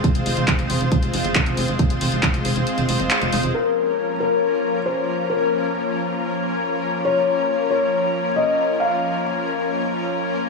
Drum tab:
CC |----------------|----------------|x---------------|----------------|
HH |xxoxxxoxxxoxxxox|xxoxxxoxxxoxxxox|----------------|----------------|
CP |----x-------x---|----x-------x---|----------------|----------------|
BD |o---o---o---o---|o---o-----------|----------------|----------------|

CC |----------------|----------------|
HH |----------------|----------------|
CP |----------------|----------------|
BD |----------------|----------------|